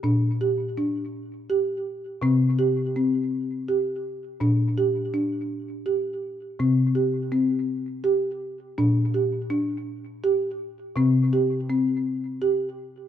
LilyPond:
<<
  \new Staff \with { instrumentName = "Marimba" } { \time 6/8 \tempo 4. = 55 d'8 g'8 d'4 g'4 | c'8 g'8 c'4 g'4 | d'8 g'8 d'4 g'4 | c'8 g'8 c'4 g'4 |
d'8 g'8 d'4 g'4 | c'8 g'8 c'4 g'4 | }
  \new Staff \with { instrumentName = "Marimba" } { \clef bass \time 6/8 bes,2. | c2. | bes,2. | c2. |
bes,2. | c2. | }
>>